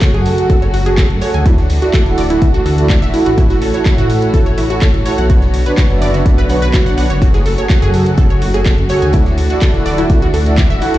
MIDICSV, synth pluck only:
0, 0, Header, 1, 2, 480
1, 0, Start_track
1, 0, Key_signature, 3, "minor"
1, 0, Tempo, 480000
1, 1457, Time_signature, 4, 2, 24, 8
1, 10981, End_track
2, 0, Start_track
2, 0, Title_t, "Synth pluck"
2, 0, Program_c, 0, 84
2, 17, Note_on_c, 0, 66, 83
2, 89, Note_off_c, 0, 66, 0
2, 142, Note_on_c, 0, 68, 99
2, 209, Note_off_c, 0, 68, 0
2, 497, Note_on_c, 0, 69, 87
2, 569, Note_off_c, 0, 69, 0
2, 622, Note_on_c, 0, 73, 75
2, 722, Note_off_c, 0, 73, 0
2, 737, Note_on_c, 0, 66, 75
2, 809, Note_off_c, 0, 66, 0
2, 861, Note_on_c, 0, 68, 81
2, 902, Note_off_c, 0, 68, 0
2, 977, Note_on_c, 0, 69, 85
2, 1049, Note_off_c, 0, 69, 0
2, 1218, Note_on_c, 0, 73, 101
2, 1290, Note_off_c, 0, 73, 0
2, 1343, Note_on_c, 0, 80, 75
2, 1382, Note_off_c, 0, 80, 0
2, 1458, Note_on_c, 0, 64, 84
2, 1529, Note_off_c, 0, 64, 0
2, 1822, Note_on_c, 0, 66, 78
2, 1862, Note_off_c, 0, 66, 0
2, 1938, Note_on_c, 0, 69, 82
2, 2010, Note_off_c, 0, 69, 0
2, 2178, Note_on_c, 0, 74, 98
2, 2285, Note_off_c, 0, 74, 0
2, 2302, Note_on_c, 0, 64, 78
2, 2342, Note_off_c, 0, 64, 0
2, 2542, Note_on_c, 0, 66, 99
2, 2609, Note_off_c, 0, 66, 0
2, 2657, Note_on_c, 0, 69, 75
2, 2729, Note_off_c, 0, 69, 0
2, 2898, Note_on_c, 0, 74, 83
2, 2970, Note_off_c, 0, 74, 0
2, 3022, Note_on_c, 0, 76, 99
2, 3089, Note_off_c, 0, 76, 0
2, 3138, Note_on_c, 0, 64, 78
2, 3210, Note_off_c, 0, 64, 0
2, 3262, Note_on_c, 0, 66, 75
2, 3329, Note_off_c, 0, 66, 0
2, 3378, Note_on_c, 0, 64, 85
2, 3421, Note_off_c, 0, 64, 0
2, 3503, Note_on_c, 0, 66, 79
2, 3569, Note_off_c, 0, 66, 0
2, 3618, Note_on_c, 0, 69, 79
2, 3690, Note_off_c, 0, 69, 0
2, 3742, Note_on_c, 0, 73, 75
2, 3782, Note_off_c, 0, 73, 0
2, 3858, Note_on_c, 0, 64, 82
2, 3929, Note_off_c, 0, 64, 0
2, 3982, Note_on_c, 0, 66, 102
2, 4049, Note_off_c, 0, 66, 0
2, 4338, Note_on_c, 0, 69, 85
2, 4410, Note_off_c, 0, 69, 0
2, 4462, Note_on_c, 0, 73, 77
2, 4562, Note_off_c, 0, 73, 0
2, 4578, Note_on_c, 0, 64, 74
2, 4650, Note_off_c, 0, 64, 0
2, 4702, Note_on_c, 0, 66, 81
2, 4742, Note_off_c, 0, 66, 0
2, 4818, Note_on_c, 0, 69, 85
2, 4889, Note_off_c, 0, 69, 0
2, 5057, Note_on_c, 0, 73, 101
2, 5129, Note_off_c, 0, 73, 0
2, 5182, Note_on_c, 0, 78, 73
2, 5222, Note_off_c, 0, 78, 0
2, 5297, Note_on_c, 0, 66, 82
2, 5369, Note_off_c, 0, 66, 0
2, 5662, Note_on_c, 0, 71, 79
2, 5702, Note_off_c, 0, 71, 0
2, 5777, Note_on_c, 0, 73, 85
2, 5849, Note_off_c, 0, 73, 0
2, 6017, Note_on_c, 0, 74, 103
2, 6125, Note_off_c, 0, 74, 0
2, 6142, Note_on_c, 0, 66, 77
2, 6182, Note_off_c, 0, 66, 0
2, 6381, Note_on_c, 0, 71, 102
2, 6448, Note_off_c, 0, 71, 0
2, 6497, Note_on_c, 0, 78, 73
2, 6541, Note_off_c, 0, 78, 0
2, 6621, Note_on_c, 0, 71, 105
2, 6662, Note_off_c, 0, 71, 0
2, 6736, Note_on_c, 0, 66, 101
2, 6809, Note_off_c, 0, 66, 0
2, 6861, Note_on_c, 0, 78, 103
2, 6928, Note_off_c, 0, 78, 0
2, 6977, Note_on_c, 0, 78, 101
2, 7020, Note_off_c, 0, 78, 0
2, 7101, Note_on_c, 0, 73, 76
2, 7168, Note_off_c, 0, 73, 0
2, 7217, Note_on_c, 0, 66, 83
2, 7260, Note_off_c, 0, 66, 0
2, 7341, Note_on_c, 0, 68, 78
2, 7408, Note_off_c, 0, 68, 0
2, 7457, Note_on_c, 0, 69, 79
2, 7529, Note_off_c, 0, 69, 0
2, 7582, Note_on_c, 0, 73, 76
2, 7622, Note_off_c, 0, 73, 0
2, 7697, Note_on_c, 0, 66, 82
2, 7769, Note_off_c, 0, 66, 0
2, 7822, Note_on_c, 0, 68, 104
2, 7889, Note_off_c, 0, 68, 0
2, 8177, Note_on_c, 0, 69, 84
2, 8249, Note_off_c, 0, 69, 0
2, 8302, Note_on_c, 0, 73, 76
2, 8402, Note_off_c, 0, 73, 0
2, 8418, Note_on_c, 0, 66, 74
2, 8490, Note_off_c, 0, 66, 0
2, 8542, Note_on_c, 0, 68, 81
2, 8582, Note_off_c, 0, 68, 0
2, 8658, Note_on_c, 0, 69, 82
2, 8730, Note_off_c, 0, 69, 0
2, 8897, Note_on_c, 0, 73, 102
2, 8969, Note_off_c, 0, 73, 0
2, 9022, Note_on_c, 0, 80, 76
2, 9062, Note_off_c, 0, 80, 0
2, 9137, Note_on_c, 0, 64, 82
2, 9209, Note_off_c, 0, 64, 0
2, 9502, Note_on_c, 0, 66, 78
2, 9542, Note_off_c, 0, 66, 0
2, 9617, Note_on_c, 0, 69, 83
2, 9689, Note_off_c, 0, 69, 0
2, 9857, Note_on_c, 0, 74, 100
2, 9965, Note_off_c, 0, 74, 0
2, 9982, Note_on_c, 0, 64, 82
2, 10022, Note_off_c, 0, 64, 0
2, 10222, Note_on_c, 0, 66, 102
2, 10289, Note_off_c, 0, 66, 0
2, 10338, Note_on_c, 0, 69, 75
2, 10410, Note_off_c, 0, 69, 0
2, 10578, Note_on_c, 0, 74, 81
2, 10650, Note_off_c, 0, 74, 0
2, 10702, Note_on_c, 0, 76, 102
2, 10769, Note_off_c, 0, 76, 0
2, 10818, Note_on_c, 0, 64, 79
2, 10889, Note_off_c, 0, 64, 0
2, 10942, Note_on_c, 0, 66, 75
2, 10981, Note_off_c, 0, 66, 0
2, 10981, End_track
0, 0, End_of_file